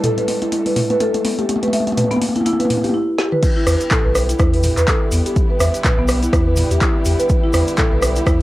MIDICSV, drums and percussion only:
0, 0, Header, 1, 2, 480
1, 0, Start_track
1, 0, Key_signature, 1, "minor"
1, 0, Tempo, 483871
1, 1478, Time_signature, 4, 2, 24, 8
1, 8353, End_track
2, 0, Start_track
2, 0, Title_t, "Drums"
2, 37, Note_on_c, 9, 42, 72
2, 37, Note_on_c, 9, 45, 98
2, 37, Note_on_c, 9, 47, 96
2, 136, Note_off_c, 9, 42, 0
2, 136, Note_off_c, 9, 45, 0
2, 136, Note_off_c, 9, 47, 0
2, 176, Note_on_c, 9, 42, 45
2, 176, Note_on_c, 9, 47, 84
2, 275, Note_off_c, 9, 42, 0
2, 275, Note_off_c, 9, 47, 0
2, 278, Note_on_c, 9, 46, 83
2, 278, Note_on_c, 9, 47, 95
2, 377, Note_off_c, 9, 46, 0
2, 377, Note_off_c, 9, 47, 0
2, 415, Note_on_c, 9, 42, 34
2, 415, Note_on_c, 9, 47, 88
2, 514, Note_off_c, 9, 42, 0
2, 514, Note_off_c, 9, 47, 0
2, 517, Note_on_c, 9, 42, 68
2, 517, Note_on_c, 9, 47, 98
2, 616, Note_off_c, 9, 42, 0
2, 616, Note_off_c, 9, 47, 0
2, 654, Note_on_c, 9, 46, 50
2, 654, Note_on_c, 9, 47, 84
2, 753, Note_off_c, 9, 46, 0
2, 753, Note_off_c, 9, 47, 0
2, 756, Note_on_c, 9, 45, 86
2, 756, Note_on_c, 9, 46, 92
2, 756, Note_on_c, 9, 47, 99
2, 856, Note_off_c, 9, 45, 0
2, 856, Note_off_c, 9, 46, 0
2, 856, Note_off_c, 9, 47, 0
2, 894, Note_on_c, 9, 42, 31
2, 894, Note_on_c, 9, 47, 89
2, 993, Note_off_c, 9, 42, 0
2, 993, Note_off_c, 9, 47, 0
2, 996, Note_on_c, 9, 42, 66
2, 996, Note_on_c, 9, 47, 100
2, 1095, Note_off_c, 9, 42, 0
2, 1095, Note_off_c, 9, 47, 0
2, 1134, Note_on_c, 9, 42, 45
2, 1134, Note_on_c, 9, 47, 84
2, 1234, Note_off_c, 9, 42, 0
2, 1234, Note_off_c, 9, 47, 0
2, 1237, Note_on_c, 9, 46, 89
2, 1237, Note_on_c, 9, 47, 99
2, 1336, Note_off_c, 9, 46, 0
2, 1336, Note_off_c, 9, 47, 0
2, 1376, Note_on_c, 9, 42, 33
2, 1376, Note_on_c, 9, 47, 94
2, 1475, Note_off_c, 9, 42, 0
2, 1475, Note_off_c, 9, 47, 0
2, 1479, Note_on_c, 9, 42, 71
2, 1479, Note_on_c, 9, 47, 103
2, 1546, Note_off_c, 9, 47, 0
2, 1546, Note_on_c, 9, 47, 90
2, 1578, Note_off_c, 9, 42, 0
2, 1616, Note_off_c, 9, 47, 0
2, 1616, Note_on_c, 9, 42, 45
2, 1616, Note_on_c, 9, 47, 87
2, 1666, Note_off_c, 9, 47, 0
2, 1666, Note_on_c, 9, 47, 86
2, 1715, Note_off_c, 9, 42, 0
2, 1717, Note_off_c, 9, 47, 0
2, 1717, Note_on_c, 9, 46, 91
2, 1717, Note_on_c, 9, 47, 99
2, 1788, Note_off_c, 9, 47, 0
2, 1788, Note_on_c, 9, 47, 93
2, 1817, Note_off_c, 9, 46, 0
2, 1857, Note_off_c, 9, 47, 0
2, 1857, Note_on_c, 9, 42, 33
2, 1857, Note_on_c, 9, 47, 92
2, 1909, Note_off_c, 9, 47, 0
2, 1909, Note_on_c, 9, 47, 90
2, 1957, Note_off_c, 9, 42, 0
2, 1960, Note_off_c, 9, 47, 0
2, 1960, Note_on_c, 9, 42, 71
2, 1960, Note_on_c, 9, 45, 97
2, 1960, Note_on_c, 9, 47, 114
2, 2027, Note_off_c, 9, 47, 0
2, 2027, Note_on_c, 9, 47, 97
2, 2059, Note_off_c, 9, 42, 0
2, 2059, Note_off_c, 9, 45, 0
2, 2096, Note_off_c, 9, 47, 0
2, 2096, Note_on_c, 9, 42, 46
2, 2096, Note_on_c, 9, 47, 87
2, 2147, Note_off_c, 9, 47, 0
2, 2147, Note_on_c, 9, 47, 91
2, 2196, Note_off_c, 9, 42, 0
2, 2199, Note_off_c, 9, 47, 0
2, 2199, Note_on_c, 9, 46, 90
2, 2199, Note_on_c, 9, 47, 106
2, 2270, Note_off_c, 9, 47, 0
2, 2270, Note_on_c, 9, 47, 91
2, 2298, Note_off_c, 9, 46, 0
2, 2340, Note_off_c, 9, 47, 0
2, 2340, Note_on_c, 9, 42, 33
2, 2340, Note_on_c, 9, 47, 96
2, 2390, Note_off_c, 9, 47, 0
2, 2390, Note_on_c, 9, 47, 100
2, 2439, Note_off_c, 9, 42, 0
2, 2441, Note_off_c, 9, 47, 0
2, 2441, Note_on_c, 9, 42, 73
2, 2441, Note_on_c, 9, 47, 112
2, 2510, Note_off_c, 9, 47, 0
2, 2510, Note_on_c, 9, 47, 98
2, 2540, Note_off_c, 9, 42, 0
2, 2579, Note_off_c, 9, 47, 0
2, 2579, Note_on_c, 9, 42, 46
2, 2579, Note_on_c, 9, 47, 98
2, 2629, Note_off_c, 9, 47, 0
2, 2629, Note_on_c, 9, 47, 96
2, 2679, Note_off_c, 9, 42, 0
2, 2681, Note_off_c, 9, 47, 0
2, 2681, Note_on_c, 9, 45, 77
2, 2681, Note_on_c, 9, 46, 94
2, 2681, Note_on_c, 9, 47, 108
2, 2750, Note_off_c, 9, 47, 0
2, 2750, Note_on_c, 9, 47, 96
2, 2780, Note_off_c, 9, 45, 0
2, 2780, Note_off_c, 9, 46, 0
2, 2819, Note_off_c, 9, 47, 0
2, 2819, Note_on_c, 9, 46, 53
2, 2819, Note_on_c, 9, 47, 95
2, 2869, Note_off_c, 9, 47, 0
2, 2869, Note_on_c, 9, 47, 93
2, 2919, Note_off_c, 9, 46, 0
2, 2968, Note_off_c, 9, 47, 0
2, 3160, Note_on_c, 9, 38, 61
2, 3259, Note_off_c, 9, 38, 0
2, 3296, Note_on_c, 9, 47, 77
2, 3396, Note_off_c, 9, 47, 0
2, 3399, Note_on_c, 9, 42, 59
2, 3399, Note_on_c, 9, 49, 108
2, 3401, Note_on_c, 9, 36, 123
2, 3405, Note_on_c, 9, 82, 37
2, 3498, Note_off_c, 9, 42, 0
2, 3498, Note_off_c, 9, 49, 0
2, 3500, Note_off_c, 9, 36, 0
2, 3504, Note_off_c, 9, 82, 0
2, 3638, Note_on_c, 9, 37, 90
2, 3638, Note_on_c, 9, 46, 92
2, 3643, Note_on_c, 9, 82, 95
2, 3737, Note_off_c, 9, 37, 0
2, 3737, Note_off_c, 9, 46, 0
2, 3742, Note_off_c, 9, 82, 0
2, 3774, Note_on_c, 9, 82, 53
2, 3777, Note_on_c, 9, 42, 47
2, 3873, Note_off_c, 9, 82, 0
2, 3876, Note_off_c, 9, 42, 0
2, 3876, Note_on_c, 9, 82, 41
2, 3879, Note_on_c, 9, 39, 109
2, 3879, Note_on_c, 9, 42, 61
2, 3879, Note_on_c, 9, 45, 90
2, 3880, Note_on_c, 9, 36, 120
2, 3975, Note_off_c, 9, 82, 0
2, 3978, Note_off_c, 9, 39, 0
2, 3978, Note_off_c, 9, 42, 0
2, 3978, Note_off_c, 9, 45, 0
2, 3980, Note_off_c, 9, 36, 0
2, 4119, Note_on_c, 9, 37, 88
2, 4119, Note_on_c, 9, 46, 93
2, 4119, Note_on_c, 9, 82, 89
2, 4218, Note_off_c, 9, 37, 0
2, 4218, Note_off_c, 9, 46, 0
2, 4218, Note_off_c, 9, 82, 0
2, 4257, Note_on_c, 9, 42, 48
2, 4260, Note_on_c, 9, 82, 55
2, 4354, Note_off_c, 9, 82, 0
2, 4354, Note_on_c, 9, 82, 39
2, 4356, Note_off_c, 9, 42, 0
2, 4360, Note_on_c, 9, 36, 127
2, 4360, Note_on_c, 9, 37, 95
2, 4360, Note_on_c, 9, 42, 60
2, 4454, Note_off_c, 9, 82, 0
2, 4459, Note_off_c, 9, 36, 0
2, 4459, Note_off_c, 9, 37, 0
2, 4459, Note_off_c, 9, 42, 0
2, 4499, Note_on_c, 9, 46, 53
2, 4595, Note_on_c, 9, 82, 82
2, 4598, Note_off_c, 9, 46, 0
2, 4599, Note_on_c, 9, 45, 78
2, 4599, Note_on_c, 9, 46, 94
2, 4694, Note_off_c, 9, 82, 0
2, 4698, Note_off_c, 9, 45, 0
2, 4698, Note_off_c, 9, 46, 0
2, 4736, Note_on_c, 9, 39, 29
2, 4736, Note_on_c, 9, 42, 47
2, 4737, Note_on_c, 9, 82, 56
2, 4836, Note_off_c, 9, 39, 0
2, 4836, Note_off_c, 9, 42, 0
2, 4837, Note_off_c, 9, 82, 0
2, 4837, Note_on_c, 9, 82, 38
2, 4839, Note_on_c, 9, 36, 118
2, 4840, Note_on_c, 9, 39, 101
2, 4840, Note_on_c, 9, 42, 57
2, 4936, Note_off_c, 9, 82, 0
2, 4938, Note_off_c, 9, 36, 0
2, 4939, Note_off_c, 9, 39, 0
2, 4939, Note_off_c, 9, 42, 0
2, 5075, Note_on_c, 9, 82, 84
2, 5078, Note_on_c, 9, 46, 95
2, 5174, Note_off_c, 9, 82, 0
2, 5178, Note_off_c, 9, 46, 0
2, 5218, Note_on_c, 9, 42, 51
2, 5219, Note_on_c, 9, 82, 48
2, 5317, Note_off_c, 9, 42, 0
2, 5318, Note_off_c, 9, 82, 0
2, 5318, Note_on_c, 9, 42, 57
2, 5318, Note_on_c, 9, 82, 42
2, 5319, Note_on_c, 9, 36, 117
2, 5417, Note_off_c, 9, 42, 0
2, 5417, Note_off_c, 9, 82, 0
2, 5418, Note_off_c, 9, 36, 0
2, 5555, Note_on_c, 9, 82, 99
2, 5558, Note_on_c, 9, 37, 96
2, 5558, Note_on_c, 9, 46, 95
2, 5655, Note_off_c, 9, 82, 0
2, 5658, Note_off_c, 9, 37, 0
2, 5658, Note_off_c, 9, 46, 0
2, 5695, Note_on_c, 9, 42, 45
2, 5702, Note_on_c, 9, 82, 58
2, 5794, Note_off_c, 9, 42, 0
2, 5799, Note_on_c, 9, 36, 127
2, 5799, Note_on_c, 9, 39, 103
2, 5799, Note_on_c, 9, 42, 61
2, 5799, Note_on_c, 9, 45, 94
2, 5801, Note_off_c, 9, 82, 0
2, 5803, Note_on_c, 9, 82, 42
2, 5898, Note_off_c, 9, 36, 0
2, 5898, Note_off_c, 9, 39, 0
2, 5898, Note_off_c, 9, 42, 0
2, 5898, Note_off_c, 9, 45, 0
2, 5902, Note_off_c, 9, 82, 0
2, 6032, Note_on_c, 9, 82, 89
2, 6039, Note_on_c, 9, 37, 94
2, 6039, Note_on_c, 9, 46, 95
2, 6131, Note_off_c, 9, 82, 0
2, 6138, Note_off_c, 9, 37, 0
2, 6138, Note_off_c, 9, 46, 0
2, 6177, Note_on_c, 9, 42, 47
2, 6179, Note_on_c, 9, 82, 53
2, 6276, Note_off_c, 9, 42, 0
2, 6278, Note_off_c, 9, 82, 0
2, 6279, Note_on_c, 9, 36, 127
2, 6280, Note_on_c, 9, 37, 98
2, 6280, Note_on_c, 9, 42, 59
2, 6282, Note_on_c, 9, 82, 37
2, 6378, Note_off_c, 9, 36, 0
2, 6379, Note_off_c, 9, 37, 0
2, 6379, Note_off_c, 9, 42, 0
2, 6382, Note_off_c, 9, 82, 0
2, 6511, Note_on_c, 9, 82, 102
2, 6519, Note_on_c, 9, 45, 76
2, 6519, Note_on_c, 9, 46, 96
2, 6610, Note_off_c, 9, 82, 0
2, 6618, Note_off_c, 9, 45, 0
2, 6618, Note_off_c, 9, 46, 0
2, 6656, Note_on_c, 9, 82, 48
2, 6657, Note_on_c, 9, 42, 46
2, 6756, Note_off_c, 9, 82, 0
2, 6757, Note_off_c, 9, 42, 0
2, 6759, Note_on_c, 9, 36, 127
2, 6759, Note_on_c, 9, 82, 39
2, 6760, Note_on_c, 9, 39, 97
2, 6760, Note_on_c, 9, 42, 56
2, 6858, Note_off_c, 9, 36, 0
2, 6858, Note_off_c, 9, 82, 0
2, 6859, Note_off_c, 9, 39, 0
2, 6859, Note_off_c, 9, 42, 0
2, 6993, Note_on_c, 9, 82, 85
2, 7000, Note_on_c, 9, 46, 90
2, 7092, Note_off_c, 9, 82, 0
2, 7099, Note_off_c, 9, 46, 0
2, 7134, Note_on_c, 9, 82, 55
2, 7139, Note_on_c, 9, 42, 46
2, 7234, Note_off_c, 9, 82, 0
2, 7234, Note_on_c, 9, 82, 44
2, 7238, Note_off_c, 9, 42, 0
2, 7239, Note_on_c, 9, 36, 127
2, 7240, Note_on_c, 9, 42, 53
2, 7334, Note_off_c, 9, 82, 0
2, 7338, Note_off_c, 9, 36, 0
2, 7339, Note_off_c, 9, 42, 0
2, 7472, Note_on_c, 9, 82, 98
2, 7480, Note_on_c, 9, 37, 94
2, 7480, Note_on_c, 9, 46, 94
2, 7571, Note_off_c, 9, 82, 0
2, 7579, Note_off_c, 9, 37, 0
2, 7579, Note_off_c, 9, 46, 0
2, 7617, Note_on_c, 9, 82, 49
2, 7620, Note_on_c, 9, 42, 45
2, 7709, Note_off_c, 9, 82, 0
2, 7709, Note_on_c, 9, 82, 40
2, 7719, Note_off_c, 9, 42, 0
2, 7720, Note_on_c, 9, 36, 123
2, 7721, Note_on_c, 9, 39, 103
2, 7721, Note_on_c, 9, 42, 56
2, 7721, Note_on_c, 9, 45, 95
2, 7808, Note_off_c, 9, 82, 0
2, 7819, Note_off_c, 9, 36, 0
2, 7820, Note_off_c, 9, 39, 0
2, 7820, Note_off_c, 9, 42, 0
2, 7820, Note_off_c, 9, 45, 0
2, 7959, Note_on_c, 9, 82, 86
2, 7961, Note_on_c, 9, 37, 99
2, 7961, Note_on_c, 9, 46, 93
2, 8059, Note_off_c, 9, 82, 0
2, 8060, Note_off_c, 9, 37, 0
2, 8060, Note_off_c, 9, 46, 0
2, 8094, Note_on_c, 9, 82, 58
2, 8099, Note_on_c, 9, 42, 46
2, 8193, Note_off_c, 9, 82, 0
2, 8199, Note_off_c, 9, 42, 0
2, 8200, Note_on_c, 9, 36, 127
2, 8200, Note_on_c, 9, 82, 40
2, 8201, Note_on_c, 9, 37, 99
2, 8201, Note_on_c, 9, 42, 55
2, 8299, Note_off_c, 9, 36, 0
2, 8299, Note_off_c, 9, 82, 0
2, 8300, Note_off_c, 9, 37, 0
2, 8300, Note_off_c, 9, 42, 0
2, 8353, End_track
0, 0, End_of_file